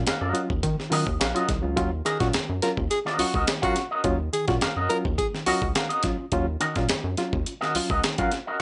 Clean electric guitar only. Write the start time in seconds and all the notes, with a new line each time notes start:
0.07 C#4 F#4 A#4 F5
0.21 C#4 F#4 A#4 D#5
0.92 C#4 F#4 A#4 D#5
1.20 C#4 F#4 A#4 F5
1.36 C#4 F#4 A#4 D#5
2.05 C#4 F#4 A#4 D#5
3.06 C#4 F#4 A#4 D#5
3.35 C#4 F#4 A#4 D#5
3.62 C#4 F#4 A#4 F5
3.91 C#4 F#4 A#4 D#5
4.61 C#4 F#4 A#4 F5
4.77 C#4 F#4 A#4 D#5
5.47 C#4 F#4 A#4 D#5
5.75 C#4 F#4 A#4 F5
5.89 C#4 F#4 A#4 D#5
6.60 C#4 F#4 A#4 D#5
7.61 C#4 F#4 A#4 D#5
7.90 C#4 F#4 A#4 D#5
8.18 C#4 F#4 A#4 F5
8.47 C#4 F#4 A#4 D#5